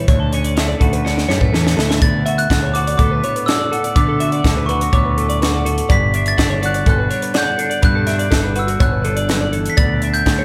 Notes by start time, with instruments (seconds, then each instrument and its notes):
0.08 picked electric bass D2, clean electric guitar D2 C#5, kick, closed hi-hat
0.20 clean electric guitar A4
0.33 clean electric guitar C#4 C#5, closed hi-hat
0.44 clean electric guitar D5, closed hi-hat
0.56 clean electric guitar D3 A3 E5, snare, closed hi-hat
0.68 clean electric guitar D5
0.80 picked electric bass D2, clean electric guitar F#4 A4, kick, closed hi-hat
0.93 clean electric guitar B4, closed hi-hat
1.05 clean electric guitar C#4 D5, snare
1.18 snare
1.28 picked electric bass F#2, clean electric guitar A2 G3 C#5, snare
1.41 clean electric guitar A3 B4, kick
1.53 picked electric bass E2, clean electric guitar C#4 A4, snare
1.65 clean electric guitar C#5, snare
1.77 picked electric bass D2, clean electric guitar E4 A4, snare
1.89 clean electric guitar E5, snare
2.01 clean electric guitar D2 B3 D5, picked electric bass D2, glockenspiel A6, kick, closed hi-hat
2.26 clean electric guitar F#4 E5, closed hi-hat
2.38 glockenspiel F#6, closed hi-hat
2.50 picked electric bass D2, clean electric guitar D3 F#5, kick, snare, closed hi-hat
2.63 clean electric guitar C#5
2.74 clean electric guitar F#4 D5, glockenspiel D6, closed hi-hat
2.87 clean electric guitar D5, closed hi-hat
2.98 picked electric bass D2, clean electric guitar B3 A4, glockenspiel D6, kick, closed hi-hat
3.11 clean electric guitar B4
3.23 clean electric guitar A2 C#5, closed hi-hat
3.36 clean electric guitar B4, closed hi-hat
3.46 clean electric guitar F#4 D5, glockenspiel E6, snare, closed hi-hat
3.60 clean electric guitar D5
3.71 clean electric guitar F#4 A4, closed hi-hat
3.84 clean electric guitar D5, closed hi-hat
3.96 clean electric guitar D2 B3 B4, picked electric bass D3, glockenspiel D6, kick, closed hi-hat
4.08 clean electric guitar A4
4.20 clean electric guitar F#4 E5, closed hi-hat
4.32 clean electric guitar D5, closed hi-hat
4.44 picked electric bass D2, clean electric guitar D3 A4, kick, snare, closed hi-hat
4.57 clean electric guitar B4
4.66 clean electric guitar B4, glockenspiel C#6, closed hi-hat
4.71 clean electric guitar F#4
4.81 clean electric guitar F#4, closed hi-hat
4.93 picked electric bass D2, clean electric guitar B3 C#5, glockenspiel D6, kick, closed hi-hat
5.05 clean electric guitar B4
5.17 clean electric guitar A2 A4, closed hi-hat
5.29 clean electric guitar D5, closed hi-hat
5.42 clean electric guitar F#4 B4, snare, closed hi-hat
5.53 clean electric guitar D5
5.65 clean electric guitar F#4 A4, closed hi-hat
5.78 closed hi-hat
5.89 picked electric bass G1, clean electric guitar G2 B3 D5, glockenspiel B6, kick, closed hi-hat
6.14 clean electric guitar D4 E5, closed hi-hat
6.26 glockenspiel A6, closed hi-hat
6.38 picked electric bass G1, clean electric guitar D3 F#5, kick, snare, closed hi-hat
6.50 clean electric guitar C#5
6.62 clean electric guitar F#4 D5, glockenspiel F#6, closed hi-hat
6.74 clean electric guitar D5, closed hi-hat
6.86 picked electric bass G1, clean electric guitar B3 A4, glockenspiel F#6, kick, closed hi-hat
6.98 clean electric guitar B4
7.10 clean electric guitar D3 C#5, closed hi-hat
7.22 clean electric guitar B4, closed hi-hat
7.34 clean electric guitar F#4 D5, glockenspiel G6, snare, closed hi-hat
7.46 clean electric guitar D5
7.58 clean electric guitar D4 A4, closed hi-hat
7.70 clean electric guitar D5, closed hi-hat
7.82 clean electric guitar G2 B3 B4, picked electric bass G2, glockenspiel F#6, kick, closed hi-hat
7.95 clean electric guitar A4
8.07 clean electric guitar D4 E5, snare, closed hi-hat
8.19 clean electric guitar D5, closed hi-hat
8.31 picked electric bass G1, clean electric guitar D3 A4, kick, snare, closed hi-hat
8.44 clean electric guitar B4
8.56 clean electric guitar F#4 B4, glockenspiel E6, closed hi-hat
8.67 clean electric guitar F#4, closed hi-hat
8.80 picked electric bass G1, clean electric guitar B3 C#5, glockenspiel F#6, kick, closed hi-hat
8.92 clean electric guitar B4
9.04 clean electric guitar D3 A4, closed hi-hat
9.16 clean electric guitar D5, closed hi-hat
9.29 clean electric guitar F#2 B4, snare, closed hi-hat
9.41 clean electric guitar D5
9.52 clean electric guitar E2 A4, closed hi-hat
9.66 closed hi-hat
9.70 glockenspiel B6
9.77 picked electric bass D2, clean electric guitar D2 B3 D5, glockenspiel A6, kick, closed hi-hat
10.02 clean electric guitar D4 E5, closed hi-hat
10.14 glockenspiel G6, closed hi-hat
10.26 picked electric bass D2, clean electric guitar D3 F#5, kick, snare, closed hi-hat
10.39 clean electric guitar C#5